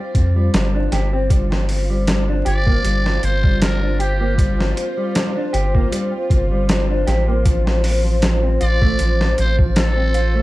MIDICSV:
0, 0, Header, 1, 7, 480
1, 0, Start_track
1, 0, Tempo, 769231
1, 811, Time_signature, 4, 2, 24, 8
1, 6504, End_track
2, 0, Start_track
2, 0, Title_t, "Analog synth pad"
2, 0, Program_c, 0, 89
2, 0, Note_on_c, 0, 72, 82
2, 802, Note_off_c, 0, 72, 0
2, 809, Note_on_c, 0, 72, 85
2, 6504, Note_off_c, 0, 72, 0
2, 6504, End_track
3, 0, Start_track
3, 0, Title_t, "Muted trumpet"
3, 0, Program_c, 1, 59
3, 0, Note_on_c, 1, 74, 120
3, 96, Note_off_c, 1, 74, 0
3, 1547, Note_on_c, 1, 74, 125
3, 2025, Note_on_c, 1, 72, 103
3, 2034, Note_off_c, 1, 74, 0
3, 2258, Note_off_c, 1, 72, 0
3, 2265, Note_on_c, 1, 70, 96
3, 2481, Note_off_c, 1, 70, 0
3, 2503, Note_on_c, 1, 67, 88
3, 2952, Note_off_c, 1, 67, 0
3, 5381, Note_on_c, 1, 74, 123
3, 5831, Note_off_c, 1, 74, 0
3, 5867, Note_on_c, 1, 72, 106
3, 5967, Note_off_c, 1, 72, 0
3, 6103, Note_on_c, 1, 69, 107
3, 6504, Note_off_c, 1, 69, 0
3, 6504, End_track
4, 0, Start_track
4, 0, Title_t, "Synth drone"
4, 0, Program_c, 2, 95
4, 0, Note_on_c, 2, 65, 77
4, 6504, Note_off_c, 2, 65, 0
4, 6504, End_track
5, 0, Start_track
5, 0, Title_t, "Clean electric guitar"
5, 0, Program_c, 3, 27
5, 226, Note_on_c, 3, 55, 76
5, 451, Note_off_c, 3, 55, 0
5, 465, Note_on_c, 3, 62, 74
5, 566, Note_off_c, 3, 62, 0
5, 574, Note_on_c, 3, 67, 94
5, 692, Note_off_c, 3, 67, 0
5, 705, Note_on_c, 3, 60, 105
5, 801, Note_off_c, 3, 60, 0
5, 813, Note_on_c, 3, 55, 75
5, 937, Note_off_c, 3, 55, 0
5, 1186, Note_on_c, 3, 55, 76
5, 1412, Note_off_c, 3, 55, 0
5, 1424, Note_on_c, 3, 62, 75
5, 1526, Note_off_c, 3, 62, 0
5, 1530, Note_on_c, 3, 67, 110
5, 1649, Note_off_c, 3, 67, 0
5, 1664, Note_on_c, 3, 58, 109
5, 1760, Note_off_c, 3, 58, 0
5, 1770, Note_on_c, 3, 55, 84
5, 1896, Note_off_c, 3, 55, 0
5, 2143, Note_on_c, 3, 55, 78
5, 2370, Note_off_c, 3, 55, 0
5, 2386, Note_on_c, 3, 62, 71
5, 2487, Note_off_c, 3, 62, 0
5, 2492, Note_on_c, 3, 67, 105
5, 2610, Note_off_c, 3, 67, 0
5, 2625, Note_on_c, 3, 58, 101
5, 2721, Note_off_c, 3, 58, 0
5, 2731, Note_on_c, 3, 55, 78
5, 2857, Note_off_c, 3, 55, 0
5, 3103, Note_on_c, 3, 55, 77
5, 3330, Note_off_c, 3, 55, 0
5, 3344, Note_on_c, 3, 62, 72
5, 3446, Note_off_c, 3, 62, 0
5, 3450, Note_on_c, 3, 67, 116
5, 3570, Note_off_c, 3, 67, 0
5, 3583, Note_on_c, 3, 58, 117
5, 3680, Note_off_c, 3, 58, 0
5, 3691, Note_on_c, 3, 55, 83
5, 3817, Note_off_c, 3, 55, 0
5, 4064, Note_on_c, 3, 55, 80
5, 4290, Note_off_c, 3, 55, 0
5, 4304, Note_on_c, 3, 62, 74
5, 4406, Note_off_c, 3, 62, 0
5, 4410, Note_on_c, 3, 67, 102
5, 4530, Note_off_c, 3, 67, 0
5, 4543, Note_on_c, 3, 58, 102
5, 4640, Note_off_c, 3, 58, 0
5, 4650, Note_on_c, 3, 53, 80
5, 4776, Note_off_c, 3, 53, 0
5, 5020, Note_on_c, 3, 53, 76
5, 5248, Note_off_c, 3, 53, 0
5, 5262, Note_on_c, 3, 60, 75
5, 5365, Note_off_c, 3, 60, 0
5, 5370, Note_on_c, 3, 65, 112
5, 5489, Note_off_c, 3, 65, 0
5, 5501, Note_on_c, 3, 57, 112
5, 5599, Note_off_c, 3, 57, 0
5, 5611, Note_on_c, 3, 53, 84
5, 5736, Note_off_c, 3, 53, 0
5, 5980, Note_on_c, 3, 53, 75
5, 6208, Note_off_c, 3, 53, 0
5, 6222, Note_on_c, 3, 60, 75
5, 6325, Note_off_c, 3, 60, 0
5, 6330, Note_on_c, 3, 65, 106
5, 6450, Note_off_c, 3, 65, 0
5, 6460, Note_on_c, 3, 57, 106
5, 6504, Note_off_c, 3, 57, 0
5, 6504, End_track
6, 0, Start_track
6, 0, Title_t, "Sub bass"
6, 0, Program_c, 4, 38
6, 94, Note_on_c, 4, 41, 81
6, 307, Note_off_c, 4, 41, 0
6, 336, Note_on_c, 4, 31, 97
6, 547, Note_off_c, 4, 31, 0
6, 573, Note_on_c, 4, 31, 79
6, 1511, Note_off_c, 4, 31, 0
6, 1535, Note_on_c, 4, 31, 96
6, 1747, Note_off_c, 4, 31, 0
6, 1774, Note_on_c, 4, 31, 81
6, 1987, Note_off_c, 4, 31, 0
6, 2015, Note_on_c, 4, 31, 90
6, 2952, Note_off_c, 4, 31, 0
6, 3455, Note_on_c, 4, 31, 90
6, 3667, Note_off_c, 4, 31, 0
6, 3935, Note_on_c, 4, 31, 93
6, 4392, Note_off_c, 4, 31, 0
6, 4414, Note_on_c, 4, 33, 101
6, 5352, Note_off_c, 4, 33, 0
6, 5375, Note_on_c, 4, 33, 92
6, 5587, Note_off_c, 4, 33, 0
6, 5616, Note_on_c, 4, 33, 82
6, 5827, Note_off_c, 4, 33, 0
6, 5856, Note_on_c, 4, 33, 97
6, 6504, Note_off_c, 4, 33, 0
6, 6504, End_track
7, 0, Start_track
7, 0, Title_t, "Drums"
7, 92, Note_on_c, 9, 36, 97
7, 93, Note_on_c, 9, 42, 71
7, 154, Note_off_c, 9, 36, 0
7, 156, Note_off_c, 9, 42, 0
7, 336, Note_on_c, 9, 42, 88
7, 339, Note_on_c, 9, 38, 118
7, 398, Note_off_c, 9, 42, 0
7, 401, Note_off_c, 9, 38, 0
7, 575, Note_on_c, 9, 42, 73
7, 578, Note_on_c, 9, 38, 53
7, 637, Note_off_c, 9, 42, 0
7, 640, Note_off_c, 9, 38, 0
7, 813, Note_on_c, 9, 36, 117
7, 814, Note_on_c, 9, 42, 88
7, 875, Note_off_c, 9, 36, 0
7, 877, Note_off_c, 9, 42, 0
7, 950, Note_on_c, 9, 38, 53
7, 1012, Note_off_c, 9, 38, 0
7, 1053, Note_on_c, 9, 46, 80
7, 1116, Note_off_c, 9, 46, 0
7, 1295, Note_on_c, 9, 42, 91
7, 1298, Note_on_c, 9, 38, 117
7, 1357, Note_off_c, 9, 42, 0
7, 1360, Note_off_c, 9, 38, 0
7, 1534, Note_on_c, 9, 42, 73
7, 1597, Note_off_c, 9, 42, 0
7, 1664, Note_on_c, 9, 36, 95
7, 1727, Note_off_c, 9, 36, 0
7, 1776, Note_on_c, 9, 42, 93
7, 1838, Note_off_c, 9, 42, 0
7, 1910, Note_on_c, 9, 38, 50
7, 1973, Note_off_c, 9, 38, 0
7, 2016, Note_on_c, 9, 42, 70
7, 2078, Note_off_c, 9, 42, 0
7, 2145, Note_on_c, 9, 36, 97
7, 2208, Note_off_c, 9, 36, 0
7, 2257, Note_on_c, 9, 42, 94
7, 2260, Note_on_c, 9, 38, 117
7, 2319, Note_off_c, 9, 42, 0
7, 2322, Note_off_c, 9, 38, 0
7, 2496, Note_on_c, 9, 42, 72
7, 2559, Note_off_c, 9, 42, 0
7, 2734, Note_on_c, 9, 36, 116
7, 2737, Note_on_c, 9, 42, 87
7, 2796, Note_off_c, 9, 36, 0
7, 2799, Note_off_c, 9, 42, 0
7, 2873, Note_on_c, 9, 38, 58
7, 2936, Note_off_c, 9, 38, 0
7, 2977, Note_on_c, 9, 42, 70
7, 3040, Note_off_c, 9, 42, 0
7, 3215, Note_on_c, 9, 42, 90
7, 3219, Note_on_c, 9, 38, 115
7, 3278, Note_off_c, 9, 42, 0
7, 3281, Note_off_c, 9, 38, 0
7, 3456, Note_on_c, 9, 42, 71
7, 3519, Note_off_c, 9, 42, 0
7, 3586, Note_on_c, 9, 36, 89
7, 3648, Note_off_c, 9, 36, 0
7, 3697, Note_on_c, 9, 42, 94
7, 3759, Note_off_c, 9, 42, 0
7, 3933, Note_on_c, 9, 36, 102
7, 3936, Note_on_c, 9, 42, 67
7, 3995, Note_off_c, 9, 36, 0
7, 3998, Note_off_c, 9, 42, 0
7, 4174, Note_on_c, 9, 42, 90
7, 4178, Note_on_c, 9, 38, 114
7, 4237, Note_off_c, 9, 42, 0
7, 4240, Note_off_c, 9, 38, 0
7, 4415, Note_on_c, 9, 42, 67
7, 4418, Note_on_c, 9, 38, 50
7, 4477, Note_off_c, 9, 42, 0
7, 4481, Note_off_c, 9, 38, 0
7, 4652, Note_on_c, 9, 36, 109
7, 4652, Note_on_c, 9, 42, 96
7, 4714, Note_off_c, 9, 36, 0
7, 4714, Note_off_c, 9, 42, 0
7, 4788, Note_on_c, 9, 38, 56
7, 4850, Note_off_c, 9, 38, 0
7, 4891, Note_on_c, 9, 46, 77
7, 4954, Note_off_c, 9, 46, 0
7, 5130, Note_on_c, 9, 42, 91
7, 5134, Note_on_c, 9, 38, 123
7, 5193, Note_off_c, 9, 42, 0
7, 5196, Note_off_c, 9, 38, 0
7, 5372, Note_on_c, 9, 42, 69
7, 5434, Note_off_c, 9, 42, 0
7, 5502, Note_on_c, 9, 36, 96
7, 5565, Note_off_c, 9, 36, 0
7, 5610, Note_on_c, 9, 42, 91
7, 5672, Note_off_c, 9, 42, 0
7, 5747, Note_on_c, 9, 38, 55
7, 5809, Note_off_c, 9, 38, 0
7, 5853, Note_on_c, 9, 42, 71
7, 5915, Note_off_c, 9, 42, 0
7, 5982, Note_on_c, 9, 36, 102
7, 6044, Note_off_c, 9, 36, 0
7, 6090, Note_on_c, 9, 42, 91
7, 6093, Note_on_c, 9, 38, 122
7, 6152, Note_off_c, 9, 42, 0
7, 6156, Note_off_c, 9, 38, 0
7, 6329, Note_on_c, 9, 42, 69
7, 6392, Note_off_c, 9, 42, 0
7, 6504, End_track
0, 0, End_of_file